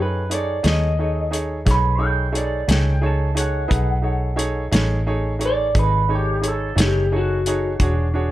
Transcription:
Already playing: F#2 D#4 G#4 A4 C#5
0.02 B4
0.30 D#4 G#4 A4 C#5, closed hi-hat
0.34 D5
0.63 D#2 D#4 G#4 A4 C#5 D#5, snare, closed hi-hat
0.99 D#4 G#4 A4 C#5
1.31 D#4 G#4 A4 C#5, closed hi-hat
1.65 B1 D#4 G#4 A4 C#5, kick, snare, closed hi-hat
1.71 B4
1.98 D#4 G#4 A4 C#5
2.04 G5
2.32 D#4 G#4 A4 C#5, closed hi-hat
2.38 D5
2.68 C#2 D#4 G#4 A4 C#5, snare, closed hi-hat
2.72 G5
3.01 D#4 G#4 A4 C#5
3.06 A5
3.35 D#4 G#4 A4 C#5, closed hi-hat
3.39 F#5
3.68 B1 D#4 G#4 A4 B4, kick, closed hi-hat
4.02 D#4 G#4 A4 C#5
4.36 D#4 G#4 A4 C#5, closed hi-hat
4.72 A1 D#4 G#4 A4 C#5, snare, closed hi-hat
5.07 D#4 G#4 A4 C#5
5.39 D#4 G#4 A4 C#5, closed hi-hat
5.45 D5
5.75 G#1 D#4 G#4 A4 D#5, kick, closed hi-hat
5.79 B4
6.09 D#4 G#4 A4 C#5
6.15 G4
6.41 D#4 G#4 A4 C#5, closed hi-hat
6.48 A4
6.76 F#1 D#4 G#4 A4 C#5, closed hi-hat
6.80 G4, snare
7.12 D#4 G#4 A4 C#5
7.16 F#4
7.46 D#4 G#4 A4 C#5, closed hi-hat
7.80 E1 D4 F#4 G#4 C#5, kick, closed hi-hat
8.14 D4 F#4 G#4 C#5

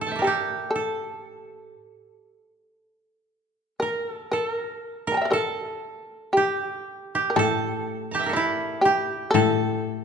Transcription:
Already playing: A2 G4 A4
0.01 A4
0.06 G5 A5
0.11 E5
0.16 A#4 D5
0.22 G4 A4
0.27 G4
0.70 A4
0.75 A4
3.80 A#4
4.10 A4
4.32 A4 A#4
4.50 A#4
5.07 A#4
5.12 A5 A#5
5.17 G5
5.22 D5 E5
5.30 A4 A#4
6.33 G4
6.37 G4
6.95 E4
7.15 G4
7.30 A#4
7.36 A2 A4
8.11 G4 A5 A#5
8.19 E5 G5
8.24 A#4 D5
8.29 A4
8.33 E4 G4
8.81 G4
9.31 A2 A4
9.35 A4

